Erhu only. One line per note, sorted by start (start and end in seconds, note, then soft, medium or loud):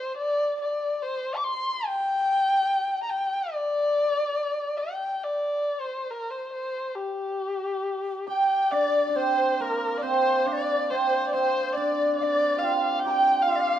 0.00 0.16 C5 medium
0.17 0.55 D5 medium
0.61 1.04 D5 medium
1.02 1.38 C5 medium
1.36 1.45 D6 medium
1.44 1.86 C6 medium
1.85 3.02 G5 loud
3.03 3.11 A#5 medium
3.10 3.54 G5 medium
3.52 4.79 D5 medium
4.77 5.25 G5 medium
5.23 5.82 D5 medium
5.80 6.12 C5 medium
6.10 6.32 A#4 medium
6.30 6.51 C5 medium
6.52 6.96 C5 medium
6.95 8.28 G4 medium
8.29 8.73 G5 medium
8.72 9.08 D5 medium
9.08 9.19 D5 medium
9.18 9.62 C5 medium
9.60 9.99 A#4 medium
9.97 10.03 D5 medium
10.02 10.48 C5 medium
10.46 10.91 D5 medium
10.90 11.26 C5 medium
11.27 11.34 D5 medium
11.33 11.74 C5 medium
11.73 12.15 D5 medium
12.16 12.60 D5 loud
12.58 13.01 F5 medium
12.99 13.43 G5 loud
13.42 13.79 F5 medium